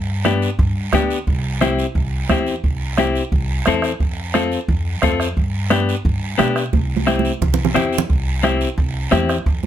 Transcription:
Already playing: upright bass G2
0.25 clean electric guitar B3 D4 G4, bombo rim, high conga, short guiro
0.42 short guiro
0.59 upright bass G2, bombo low, long guiro
0.93 upright bass D2, clean electric guitar B3 D4 G4, bombo low, bombo rim, high conga, short guiro
1.11 short guiro
1.27 upright bass C2, bombo low, long guiro
1.61 clean electric guitar C4 E4 G4, bombo rim, high conga, short guiro
1.79 short guiro
1.95 upright bass C2, bombo low, long guiro
2.29 upright bass E2, clean electric guitar C4 E4 G4, bombo low, bombo rim, high conga, short guiro
2.47 short guiro
2.64 upright bass C2, bombo low, long guiro
2.98 clean electric guitar C4 E4 G4, bombo rim, high conga, short guiro
3.16 short guiro
3.32 upright bass C2, bombo low, long guiro
3.66 upright bass E2, clean electric guitar C4 E4 A4, bombo rim, high conga, short guiro
3.82 bombo rim, short guiro
4.00 upright bass F2, bombo low, long guiro
4.34 clean electric guitar C4 F4 A4, bombo rim, high conga, short guiro
4.52 short guiro
4.68 upright bass F2, bombo low, long guiro
5.02 upright bass F2, clean electric guitar C4 F4 A4, bombo low, bombo rim, high conga, short guiro
5.20 bombo rim, short guiro
5.37 upright bass G2, bombo low, long guiro
5.70 clean electric guitar B3 D4 G4, bombo rim, high conga, short guiro
5.89 short guiro
6.05 upright bass G2, bombo low, long guiro
6.38 upright bass B2, clean electric guitar B3 D4 G4, bombo rim, high conga, short guiro
6.56 bombo rim, short guiro
6.73 upright bass C2, bombo low, high conga, long guiro
6.97 high conga
7.07 clean electric guitar C4 E4 G4, bombo rim, high conga, short guiro
7.19 high conga
7.25 short guiro
7.41 upright bass C2, bombo low, low conga, long guiro
7.54 low conga
7.65 low conga
7.74 upright bass E2, clean electric guitar C4 E4 G4, bombo rim, low conga, short guiro
7.93 short guiro
7.98 low conga
8.09 upright bass C2, bombo low, long guiro
8.43 clean electric guitar C4 E4 G4, bombo rim, high conga, short guiro
8.61 short guiro
8.78 upright bass C2, bombo low, long guiro
9.11 upright bass E2, clean electric guitar C4 E4 G4, bombo rim, high conga, short guiro
9.29 bombo rim, short guiro
9.46 upright bass F2, bombo low, long guiro
9.63 high conga

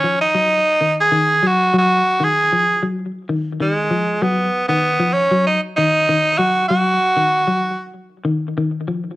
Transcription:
Already playing: tenor saxophone C#4
0.04 clean electric guitar F3
0.21 tenor saxophone D#4
0.35 clean electric guitar F#3
0.81 clean electric guitar D#3
1.01 tenor saxophone G#4
1.12 clean electric guitar D#3
1.43 clean electric guitar F#3, tenor saxophone F#4
1.74 clean electric guitar F#3
1.78 tenor saxophone F#4
2.20 clean electric guitar D#3, tenor saxophone G#4
2.53 clean electric guitar F3
2.83 clean electric guitar F#3
3.29 clean electric guitar D#3
3.60 clean electric guitar D#3, tenor saxophone G#3
3.91 clean electric guitar F3
4.22 clean electric guitar F#3, tenor saxophone B3
4.68 clean electric guitar D#3, tenor saxophone B3
5.00 clean electric guitar F3
5.13 tenor saxophone C#4
5.31 clean electric guitar F#3
5.47 tenor saxophone D#4
5.76 clean electric guitar D#3, tenor saxophone D#4
6.09 clean electric guitar D#3
6.38 clean electric guitar F#3, tenor saxophone F#4
6.68 clean electric guitar F#3, tenor saxophone F#4
7.17 clean electric guitar D#3
7.47 clean electric guitar F#3
8.25 clean electric guitar D#3
8.57 clean electric guitar D#3
8.88 clean electric guitar F3

